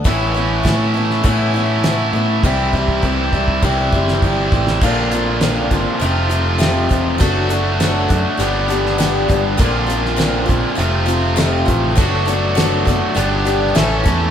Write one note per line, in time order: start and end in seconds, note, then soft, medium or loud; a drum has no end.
0.04 0.61 A1 medium
0.04 0.34 A2 medium
0.04 0.35 E3 medium
0.04 1.24 A3 medium
0.04 0.35 B3 medium
0.04 0.35 C#4 medium
0.04 0.33 E4 medium
0.04 kick loud
0.04 closed hi-hat medium
0.34 0.64 B3 soft
0.34 0.64 C#4 soft
0.34 0.64 E4 medium
0.63 1.20 A2 medium
0.63 0.94 E3 medium
0.63 0.95 B3 medium
0.63 0.95 C#4 medium
0.63 0.93 E4 medium
0.63 kick medium
0.63 snare loud
0.63 closed hi-hat medium
0.94 1.24 B3 soft
0.94 1.24 C#4 soft
0.94 1.24 E4 medium
1.10 snare soft
1.24 1.54 A2 medium
1.24 2.10 A2 medium
1.24 1.54 E3 medium
1.24 2.43 A3 medium
1.24 1.54 B3 medium
1.24 1.55 C#4 medium
1.24 1.53 E4 medium
1.24 kick loud
1.24 closed hi-hat medium
1.54 1.84 B3 soft
1.54 1.85 C#4 medium
1.54 1.84 E4 medium
1.84 2.14 E3 medium
1.84 2.15 B3 medium
1.84 2.14 C#4 medium
1.84 2.12 E4 medium
1.84 snare loud
1.84 closed hi-hat medium
2.13 2.41 A2 medium
2.13 2.44 B3 soft
2.13 2.44 C#4 soft
2.13 2.43 E4 medium
2.43 2.99 C2 medium
2.43 2.74 C3 medium
2.43 2.74 E3 medium
2.43 2.74 G3 medium
2.43 2.74 C4 medium
2.43 2.72 E4 medium
2.43 kick loud
2.73 3.02 G3 soft
2.73 3.03 C4 soft
2.73 3.03 E4 medium
2.73 kick medium
2.88 kick medium
3.02 3.59 C2 medium
3.02 3.33 E3 medium
3.02 3.33 G3 medium
3.02 3.34 C4 medium
3.02 3.32 E4 medium
3.02 kick medium
3.33 3.62 G3 soft
3.33 3.63 C4 soft
3.33 3.63 E4 medium
3.33 kick medium
3.48 kick medium
3.62 3.90 C2 medium
3.62 3.93 C3 medium
3.62 3.93 E3 medium
3.62 3.93 G3 medium
3.62 3.93 C4 medium
3.62 3.91 E4 medium
3.62 kick medium
3.92 4.20 F#1 medium
3.92 4.23 G3 soft
3.92 4.23 C4 soft
3.92 4.22 E4 medium
3.92 kick medium
4.08 snare medium
4.22 4.49 G1 medium
4.22 4.52 E3 medium
4.22 4.53 G3 medium
4.22 4.52 C4 medium
4.22 4.51 E4 medium
4.22 kick medium
4.52 4.79 A1 medium
4.52 4.83 G3 soft
4.52 4.83 C4 soft
4.52 4.82 E4 medium
4.52 kick medium
4.67 snare medium
4.81 5.67 A#1 medium
4.81 5.12 A#2 medium
4.81 5.13 D3 medium
4.81 5.13 A#3 medium
4.81 5.12 C4 medium
4.81 6.01 D4 loud
4.81 5.10 F4 medium
4.81 kick loud
4.81 crash medium
5.11 5.42 A#3 soft
5.11 5.42 C4 soft
5.11 5.42 F4 medium
5.11 closed hi-hat medium
5.41 5.72 A#2 medium
5.41 5.72 D3 medium
5.41 5.72 A#3 medium
5.41 5.71 C4 medium
5.41 5.70 F4 medium
5.41 snare loud
5.41 closed hi-hat medium
5.71 5.85 G1 medium
5.71 6.01 A#3 soft
5.71 6.01 C4 soft
5.71 6.01 F4 medium
5.71 kick medium
5.71 closed hi-hat medium
6.00 6.87 F1 medium
6.00 7.19 F2 medium
6.00 7.19 C3 medium
6.00 6.30 F3 medium
6.00 6.30 A3 medium
6.00 6.29 C4 medium
6.00 6.28 F4 medium
6.00 closed hi-hat medium
6.29 6.58 F3 soft
6.29 6.59 A3 soft
6.29 6.59 C4 medium
6.29 6.59 F4 medium
6.29 closed hi-hat medium
6.58 6.90 F2 medium
6.58 6.90 C3 medium
6.58 6.90 F3 medium
6.58 6.90 A3 medium
6.58 6.89 C4 medium
6.58 6.88 F4 medium
6.58 snare loud
6.58 closed hi-hat medium
6.89 7.18 E1 medium
6.89 7.18 F3 soft
6.89 7.19 A3 soft
6.89 7.20 C4 soft
6.89 7.20 F4 medium
6.89 kick medium
6.89 closed hi-hat medium
7.18 8.06 F#1 medium
7.18 7.49 F#3 medium
7.18 8.38 A3 medium
7.18 7.50 B3 medium
7.18 7.50 D4 medium
7.18 7.48 A4 medium
7.18 kick loud
7.18 closed hi-hat medium
7.23 8.39 F#4 loud
7.49 7.79 B3 soft
7.49 7.80 D4 soft
7.49 7.80 A4 medium
7.49 closed hi-hat medium
7.80 8.10 F#3 medium
7.80 8.10 B3 medium
7.80 8.09 D4 medium
7.80 8.07 A4 medium
7.80 snare loud
7.80 closed hi-hat medium
8.08 8.24 F#2 medium
8.08 8.38 B3 soft
8.08 8.38 D4 medium
8.08 8.39 A4 medium
8.08 kick medium
8.08 closed hi-hat medium
8.37 9.25 G1 medium
8.37 9.57 G2 medium
8.37 9.58 D3 medium
8.37 8.69 G3 medium
8.37 8.69 B3 medium
8.37 8.68 D4 medium
8.37 8.67 G4 medium
8.37 closed hi-hat medium
8.68 8.98 G3 soft
8.68 8.98 B3 medium
8.68 8.99 D4 medium
8.68 8.99 G4 medium
8.68 closed hi-hat medium
8.86 snare soft
8.98 9.29 G2 medium
8.98 9.29 D3 medium
8.98 9.29 G3 medium
8.98 9.29 B3 medium
8.98 9.28 D4 medium
8.98 9.27 G4 medium
8.98 snare loud
8.98 closed hi-hat medium
9.28 9.57 G1 medium
9.28 9.57 G3 soft
9.28 9.58 B3 soft
9.28 9.58 D4 medium
9.28 9.59 G4 medium
9.28 kick medium
9.28 closed hi-hat medium
9.57 10.45 A#1 medium
9.57 9.88 A#2 medium
9.57 9.88 D3 medium
9.57 9.88 A#3 medium
9.57 9.87 C4 medium
9.57 10.78 D4 loud
9.57 9.85 F4 medium
9.57 kick loud
9.57 closed hi-hat medium
9.86 10.16 A#3 soft
9.86 10.17 C4 medium
9.86 10.17 F4 soft
9.86 closed hi-hat medium
10.05 snare soft
10.16 10.47 A#2 medium
10.16 10.48 D3 medium
10.16 10.48 A#3 medium
10.16 10.47 C4 medium
10.16 10.45 F4 medium
10.16 snare loud
10.16 closed hi-hat medium
10.46 10.63 A#1 medium
10.46 10.76 A#3 soft
10.46 10.76 C4 soft
10.46 10.77 F4 medium
10.46 kick medium
10.46 closed hi-hat medium
10.75 11.64 F1 loud
10.75 11.96 F2 medium
10.75 11.96 C3 medium
10.75 11.07 F3 medium
10.75 11.06 A3 medium
10.75 11.05 C4 medium
10.75 11.04 F4 medium
10.75 closed hi-hat medium
10.79 11.96 F3 medium
11.06 11.36 F3 medium
11.06 11.36 A3 medium
11.06 11.36 C4 medium
11.06 11.37 F4 medium
11.06 closed hi-hat medium
11.36 11.67 F2 medium
11.36 11.67 C3 medium
11.36 11.67 F3 medium
11.36 11.66 A3 medium
11.36 11.65 C4 medium
11.36 11.64 F4 medium
11.36 snare loud
11.36 closed hi-hat medium
11.65 11.95 A1 medium
11.65 11.95 F3 soft
11.65 11.96 A3 soft
11.65 11.97 C4 medium
11.65 11.96 F4 medium
11.65 kick medium
11.65 closed hi-hat medium
11.95 12.83 F#1 medium
11.95 12.26 F#3 medium
11.95 13.15 A3 loud
11.95 12.27 B3 medium
11.95 12.26 D4 medium
11.95 12.24 A4 medium
11.95 kick loud
11.95 closed hi-hat medium
12.00 13.16 F#4 loud
12.25 12.55 B3 soft
12.25 12.56 D4 medium
12.25 12.56 A4 medium
12.25 closed hi-hat medium
12.55 12.86 F#3 medium
12.55 12.87 B3 medium
12.55 12.86 D4 medium
12.55 12.84 A4 medium
12.55 snare loud
12.55 closed hi-hat medium
12.85 13.01 F#1 medium
12.85 13.14 B3 soft
12.85 13.15 D4 soft
12.85 13.16 A4 medium
12.85 kick medium
12.85 closed hi-hat medium
13.15 13.72 G1 loud
13.15 13.74 G2 medium
13.15 13.74 D3 medium
13.15 13.45 G3 medium
13.15 13.46 B3 medium
13.15 13.45 D4 medium
13.15 13.44 G4 medium
13.15 closed hi-hat medium
13.45 13.75 G3 soft
13.45 13.75 B3 soft
13.45 13.76 D4 medium
13.45 13.76 G4 medium
13.45 closed hi-hat medium
13.75 14.03 A1 loud
13.75 14.05 A2 medium
13.75 14.05 E3 medium
13.75 14.06 A3 medium
13.75 14.04 C#4 medium
13.75 14.02 A4 medium
13.75 snare loud
13.75 closed hi-hat medium
14.04 14.31 E2 medium
14.04 14.31 A3 soft
14.04 14.31 C#4 medium
14.04 14.31 A4 medium
14.04 kick medium
14.04 closed hi-hat medium